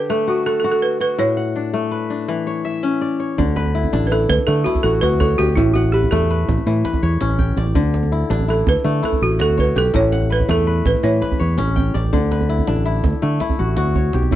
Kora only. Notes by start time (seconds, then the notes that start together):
Already playing: D3 D4 G4 B4
0.10 A3
0.27 F#4
0.46 A4
0.64 F#4
1.00 F#4
1.18 A2
1.37 F#5
1.56 D4
1.74 A3
1.91 B4
2.10 D4
2.28 E3
2.47 C#5
2.65 E5
2.83 C#4
3.01 D5
3.20 C#5
3.38 D3
3.56 B4
3.75 E4
3.93 D4
4.11 E4
4.47 A3
4.66 E4
4.84 F#4
5.02 F#4
5.20 C#5
5.39 G4
5.57 A2
5.76 F#5
5.94 B4
6.12 A3
6.30 B4
6.67 E3
6.84 B4
7.03 C#5
7.21 C#4
7.39 G5
7.57 D5
7.75 D3
8.12 E4
8.30 D4
8.48 E4
8.84 A3
9.03 E4
9.39 F#4
9.57 C#5
9.76 G4
9.94 A2
10.12 F#5
10.30 B4
10.49 A3
10.67 B4
11.03 E3
11.22 B4
11.40 C#5
11.58 C#4
11.76 G5
11.94 D5
12.13 D3
12.31 B4
12.49 E4
12.67 D4
12.86 E4
13.22 A3
13.41 E4
13.59 F#4
13.77 F#4
13.96 C#5
14.14 G4
14.32 A2